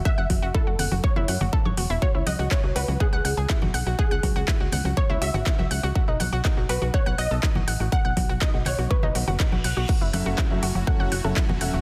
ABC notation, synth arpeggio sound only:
X:1
M:4/4
L:1/16
Q:1/4=122
K:F#dor
V:1 name="Synth arpeggio sound"
f f F F E F f F c E f F A c F E | F E f F E F, F F f f f G E F f F | f f F F E F f F c E F F E F f F | F D f F D F, F F f f f A D F f F |
f f F F D F f F c D F F D F f F | F E f F E F, F F f f f A E F f F |]